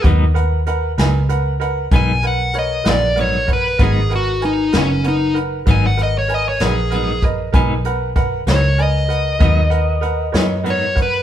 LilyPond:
<<
  \new Staff \with { instrumentName = "Lead electric guitar" } { \time 12/8 \key gis \minor \tempo 4. = 64 r2. gis''8 fis''8 dis''8 d''8 cis''8 b'8 | gis'8 fis'8 dis'8 cis'8 dis'8 r8 gis''16 fis''16 dis''16 cis''16 dis''16 cis''16 gis'4 r8 | r4. cis''8 dis''2. cis''8 b'8 | }
  \new Staff \with { instrumentName = "Upright piano" } { \time 12/8 \key gis \minor <ais' b' fis''>8 <ais' b' fis''>8 <ais' b' fis''>8 <ais' b' gis''>8 <ais' b' fis''>8 <ais' b' fis''>8 <ais' b' gis''>8 <ais' b' fis''>8 <ais' b' cis''>8 <ais' b' fis''>8 <ais' b' fis''>8 <ais' b' fis''>8 | <ais' b' fis''>8 <ais' b' fis''>8 <ais' b' gis''>8 <ais' b' fis''>8 <ais' b' fis''>8 <ais' b' fis''>8 <ais' b' fis''>8 <ais' b' fis''>8 <ais' b' gis''>8 <ais' b' fis''>8 <ais' b' fis''>8 <ais' b' dis''>8 | <ais' b' gis''>8 <ais' b' fis''>8 <ais' b' fis''>8 <ais' b' cis''>8 <ais' b' gis''>8 <ais' b' fis''>8 <ais' b' fis''>8 <ais' b' fis''>8 <ais' b' fis''>8 <ais' b' cis''>8 <ais' b' fis''>8 <ais' b' fis''>8 | }
  \new Staff \with { instrumentName = "Clean electric guitar" } { \time 12/8 \key gis \minor <gis, fis b dis'>8 r4 <fis b dis'>8 r4 <gis, fis b dis'>8 r4 <fis b dis'>8 <gis, fis b dis'>8 r8 | <gis, fis b dis'>8 r4 <fis b dis'>8 r4 <gis, fis b dis'>8 r4 <fis b dis'>8 <gis, fis b dis'>8 r8 | <gis, fis b dis'>8 r4 <fis b dis'>8 r4 <gis, fis b dis'>8 r4 <fis b dis'>8 <gis, fis b dis'>8 r8 | }
  \new Staff \with { instrumentName = "Fingered electric bass" } { \clef bass \time 12/8 \key gis \minor dis,4. cis,4. b,,4. ais,,4. | gis,,4. fis,,4. gis,,4. ais,,4. | b,,4. cis,4. dis,4. fis,4. | }
  \new DrumStaff \with { instrumentName = "Drums" } \drummode { \time 12/8 <hh bd>8 hh8 hh8 <hh sn>8 hh8 hh8 <hh bd>8 hh8 hh8 <hh sn>8 hh8 <hh bd>8 | <hh bd>8 hh8 hh8 <hh sn>8 hh8 hh8 <hh bd>8 hh8 hh8 <hh sn>8 hh8 <hh bd>8 | <hh bd>8 hh8 <hh bd>8 <hh sn>8 hh8 hh8 <hh bd>8 hh8 hh8 <hh sn>8 hh8 <hh bd>8 | }
>>